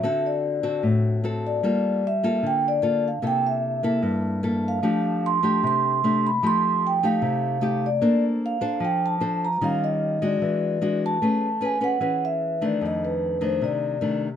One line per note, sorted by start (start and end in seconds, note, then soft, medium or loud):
0.03 0.81 D3 medium
0.03 0.60 C4 medium
0.03 0.60 F#4 medium
0.03 0.60 A4 medium
0.03 0.25 E5 medium
0.26 0.81 D5 medium
0.63 1.20 C4 medium
0.63 1.20 F#4 medium
0.63 1.20 A4 medium
0.83 1.61 A2 medium
1.24 1.60 C4 soft
1.24 1.61 F#4 medium
1.24 1.61 A4 medium
1.47 2.07 D5 medium
1.63 2.41 G3 medium
1.63 2.03 A#3 soft
1.63 2.03 F4 soft
1.63 2.04 A4 medium
2.07 2.42 E5 medium
2.23 2.80 A#3 medium
2.23 2.80 F4 medium
2.23 2.81 A4 medium
2.43 3.21 D3 medium
2.43 2.66 G5 medium
2.68 3.03 D5 medium
2.82 3.08 A#3 medium
2.82 3.09 F4 medium
2.82 3.09 A4 medium
3.08 3.26 F5 medium
3.22 4.01 C3 medium
3.22 3.79 A#3 soft
3.22 3.80 E4 soft
3.22 3.80 A4 medium
3.27 3.46 G5 loud
3.46 4.01 E5 medium
3.83 4.40 A#3 medium
3.83 4.40 E4 medium
3.83 4.40 A4 medium
4.02 4.81 G2 medium
4.43 4.80 A#3 medium
4.43 4.80 E4 soft
4.43 4.80 A4 medium
4.68 5.27 F5 medium
4.83 5.61 F3 medium
4.83 5.40 A3 medium
4.83 5.40 D4 medium
4.83 5.40 G4 medium
5.26 5.66 C6 loud
5.43 5.99 A3 medium
5.43 6.00 D4 medium
5.43 6.00 G4 medium
5.63 6.41 C3 medium
5.63 6.26 C6 medium
6.04 6.29 A3 medium
6.04 6.29 D4 medium
6.04 6.29 G4 medium
6.27 6.45 B5 medium
6.43 7.21 F3 medium
6.43 7.00 A3 soft
6.43 6.99 D#4 medium
6.43 7.00 G4 medium
6.43 6.86 C6 loud
6.87 7.05 G5 loud
7.03 7.59 A3 medium
7.03 7.60 D#4 medium
7.03 7.60 G4 medium
7.03 7.86 F5 medium
7.22 8.00 C3 medium
7.61 7.87 A3 medium
7.61 7.88 D#4 medium
7.61 7.88 G4 medium
7.86 8.21 D5 medium
8.01 8.80 A#3 medium
8.01 8.58 D4 medium
8.01 8.59 A4 medium
8.01 8.59 C5 medium
8.46 8.85 F5 medium
8.61 9.18 D4 medium
8.61 9.18 A4 medium
8.61 9.18 C5 medium
8.80 9.59 F3 medium
8.85 9.04 G5 medium
9.06 9.45 A5 medium
9.20 9.47 D4 soft
9.20 9.47 A4 medium
9.20 9.47 C5 medium
9.45 9.64 A#5 medium
9.61 10.39 D#3 medium
9.61 10.18 G3 medium
9.61 10.18 C#4 medium
9.61 10.18 F4 medium
9.61 9.81 F5 medium
9.84 10.24 D#5 medium
10.22 10.78 G#3 medium
10.22 10.78 D4 medium
10.22 10.79 F#4 medium
10.22 10.99 D5 medium
10.42 11.19 E3 medium
10.82 11.18 G#3 soft
10.82 11.18 D4 medium
10.82 11.18 F#4 medium
11.06 11.65 A5 medium
11.22 11.99 A3 medium
11.22 11.47 C#4 soft
11.22 11.47 G#4 medium
11.22 11.48 B4 medium
11.61 11.78 C#4 medium
11.61 11.78 G#4 medium
11.61 11.78 B4 medium
11.65 11.82 G#5 medium
11.81 11.98 C#4 medium
11.81 11.98 G#4 medium
11.81 11.98 B4 medium
11.81 12.24 F#5 medium
12.00 12.79 E3 medium
12.00 12.57 C#4 soft
12.00 12.58 G#4 soft
12.00 12.58 B4 medium
12.25 12.60 E5 medium
12.61 13.38 D#3 medium
12.61 13.38 A3 medium
12.61 13.38 D4 medium
12.61 12.82 D5 medium
12.81 13.59 F2 medium
12.86 13.04 D#5 medium
13.05 13.40 B4 medium
13.41 13.98 D#3 medium
13.41 13.98 A3 medium
13.41 13.98 D4 medium
13.41 13.61 C5 medium
13.62 14.36 C3 medium
13.62 14.18 D5 medium
14.01 14.28 D#3 medium
14.01 14.28 A3 medium
14.01 14.28 D4 medium